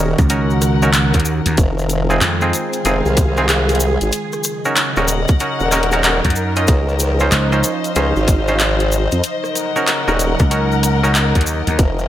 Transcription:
Already playing: D#1 D#3 C#4 D#4 F#4 A#4 F#5
0.18 C#2, kick, closed hi-hat, cabasa
0.30 C#4 D#4 F#4 A#4, closed hi-hat, cabasa
0.50 cabasa
0.61 cross-stick, closed hi-hat, cabasa
0.82 C#4 D#4 F#4 A#4, cabasa
0.94 clap, closed hi-hat, cabasa
1.14 D#2, kick, closed hi-hat, cabasa
1.20 closed hi-hat
1.25 cabasa
1.46 D#2, closed hi-hat, cabasa
1.57 F1 G#3 C4 F4, kick, closed hi-hat, cabasa
1.79 cabasa
1.89 closed hi-hat, cabasa
2.10 C4 D#4 F4 G#4, cabasa
2.21 F2, clap, closed hi-hat, cabasa
2.39 C4 D#4 F4 G#4, cabasa
2.53 closed hi-hat, cabasa
2.73 F5, closed hi-hat, cabasa
2.85 F1 C4 D#4 F4 G#4, closed hi-hat, cabasa
3.06 C2, cabasa
3.17 kick, closed hi-hat, cabasa
3.37 C4 D#4 F4 G#4, cross-stick, cabasa
3.49 clap, closed hi-hat, cabasa
3.69 closed hi-hat, cabasa
3.75 closed hi-hat
3.80 cabasa
4.01 G#1, closed hi-hat, cabasa
4.12 C#3 F#3 D#4, closed hi-hat, cabasa
4.32 cross-stick, cabasa
4.44 cross-stick, closed hi-hat, cabasa
4.60 D#5
4.65 C#4 D#4 F#4 A#4, cabasa
4.76 clap, closed hi-hat, cabasa
4.81 A#4
4.87 F#5
4.96 D#1 C#4 D#4 F#4 A#4, cabasa
5.08 closed hi-hat, cabasa
5.28 kick, closed hi-hat, cabasa
5.40 C#4 D#4 F#4 A#4, closed hi-hat, cabasa
5.60 D#1, cabasa
5.72 C#4 D#4 F#4 A#4, cross-stick, clap, closed hi-hat, cabasa
5.83 closed hi-hat
5.92 C#4 D#4 F#4 A#4, closed hi-hat, cabasa
6.03 C#4 D#4 F#4 A#4, clap, closed hi-hat, cabasa
6.25 F#2, kick, closed hi-hat, cabasa
6.30 closed hi-hat
6.36 cabasa
6.56 C#4 D#4 F4 D#5, closed hi-hat, cabasa
6.67 C#2 F3, kick, closed hi-hat, cabasa
6.86 C5, cabasa
6.99 closed hi-hat, cabasa
7.20 C#4 D#4 F4 C5, cabasa
7.31 C#2, clap, closed hi-hat, cabasa
7.52 C#4 D#4 F4 C5, cabasa
7.63 closed hi-hat, cabasa
7.74 F5
7.84 closed hi-hat, cabasa
7.95 C#2 C#4 D#4 F4 C5, closed hi-hat, cabasa
8.16 G#1, cabasa
8.28 kick, closed hi-hat, cabasa
8.48 C#4 D#4 F4 C5, cross-stick, cabasa
8.60 clap, closed hi-hat, cabasa
8.80 closed hi-hat, cabasa
8.92 cabasa
9.12 F2, closed hi-hat, cabasa
9.24 C#3 F#3, closed hi-hat, cabasa
9.44 cross-stick, cabasa
9.49 A#4
9.55 F#5, cross-stick, closed hi-hat, cabasa
9.61 cross-stick
9.66 cross-stick
9.71 cross-stick
9.76 C#4 D#4 F#4 A#4, cabasa
9.87 clap, closed hi-hat, cabasa
10.08 D#1 C#4 D#4 F#4 A#4, cabasa
10.19 closed hi-hat, cabasa
10.39 C#2, kick, closed hi-hat, cabasa
10.51 C#4 D#4 F#4 A#4, closed hi-hat, cabasa
10.72 cabasa
10.83 cross-stick, closed hi-hat, cabasa
11.03 C#4 D#4 F#4 A#4, cabasa
11.15 clap, closed hi-hat, cabasa
11.35 D#2, kick, closed hi-hat, cabasa
11.41 closed hi-hat
11.46 cabasa
11.67 D#2, closed hi-hat, cabasa
11.79 F1 D#3 G#3 C4 F4, kick, closed hi-hat, cabasa
11.99 cabasa

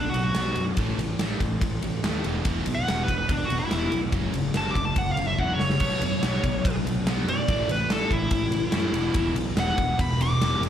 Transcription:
Already playing: B2 F#3
0.09 F#4
0.14 B1 B2 F#3, ride
0.24 F#4
0.35 B1 B2 F#3 B3, snare, ride
0.56 F#2 B2 F#3, ride
0.77 A1 A2 E3 A3, kick, ride
0.98 A1 A2 E3, ride
1.19 A1 A2 E3 A3, snare, ride
1.40 A1 A2 E3, kick, ride
1.61 A1 A2 E3, kick, ride
1.82 A1 A2 E3, ride
2.03 D#2 A2 E3 A3, snare, ride
2.24 E1 E2 B2 E3, ride
2.45 E1 E2 B2 E3, kick, ride
2.66 B1 E2 B2, ride
2.75 F#5
2.88 E1 E2 B2 E3, snare, ride
3.03 B4
3.08 E1 E2 B2, kick, ride
3.18 B4
3.29 E1 E2 B2 D4, kick, ride
3.45 F#4
3.50 E1 E2 B2, ride
3.59 E4
3.71 E1 E2 B2 E3, snare, ride
3.92 B1 E2 B2, ride
4.12 F#1 F#2 C#3 F#3, kick, ride
4.34 F#1 F#2 C#3, ride
4.54 F#1 F#2 C#3 F#3 A5, snare, ride
4.71 D6
4.75 F#1 F#2 C#3, kick, ride
4.85 A5
4.96 F#1 F#2 C#3 F#5, kick, ride
5.11 F5
5.17 F#1 F#2 C#3, ride
5.27 E5
5.38 E2 F#2 C#3 F#3 F#5, kick
5.54 C#5
5.60 F#1 F#2 C#3, snare
5.70 snare
5.80 B1 B2 F#3 B3, kick, splash, crash
6.01 F#2 B2 F#3, ride
6.23 B1 B2 F#3 B3, snare, ride
6.44 B1 B2 F#3, kick, ride
6.65 B1 B2 F#3, kick, ride
6.85 B1 B2 F#3, ride
7.04 B1 B2 F#3, snare, ride
7.09 B3
7.24 F#2 B2
7.28 F#3 D5, ride
7.48 A1 A2 E3 A3, kick, ride
7.67 A1 A2 E3 B4, ride
7.88 A1 A2 E3 A3 A4, snare, ride
8.11 A1 A2 E3 E4, kick, ride
8.30 A1 A2 E3, kick, ride
8.50 A1 A2 E3, ride
8.72 F#2 A2 E3 A3, snare, ride
8.92 E1 E2 B2 E3, ride
9.14 E1 E2 B2 E3, kick, ride
9.34 B1 E2 B2, ride
9.55 E1 E2 B2 E3, snare, ride
9.60 F#5
9.77 E1 E2 B2, kick, ride
9.99 E1 E2 B2 B5, kick, ride
10.18 E1 E2 B2 D6, ride
10.39 E1 E2, snare, ride
10.43 B2 E3
10.59 F1 E2
10.63 B2, ride

